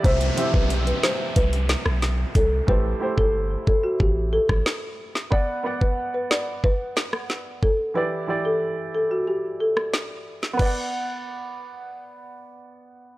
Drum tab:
CC |----------------|----------------|----------------|----------------|
HH |xxx-xxx-xxx-x-x-|----------------|----------------|----------------|
SD |------o---oro---|-----------ro--o|------o---oro---|-----------ro--o|
BD |o--o----o-----o-|o--o--o-o--o----|o--o----o-----o-|----------------|

CC |x---------------|
HH |----------------|
SD |----------------|
BD |o---------------|